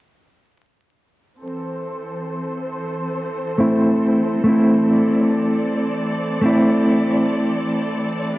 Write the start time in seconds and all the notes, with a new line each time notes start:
1.42 E3 C4 A4 C5
3.58 A3 C4 E4
4.44 A3 C4
4.48 E4
4.90 D5
6.41 A3 C4
6.46 E4